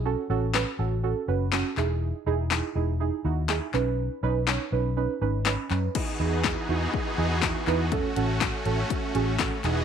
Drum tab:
CC |--------|--------|--------|x-------|
HH |--------|--------|--------|--------|
CP |--x---xx|--x---xx|--x---xx|--x---xx|
SD |--o---o-|--o---o-|--o---o-|--o---o-|
BD |--------|--------|--------|o-o-o-o-|

CC |--------|
HH |xxxxxxxx|
CP |--x---xx|
SD |--o---o-|
BD |o-o-o-o-|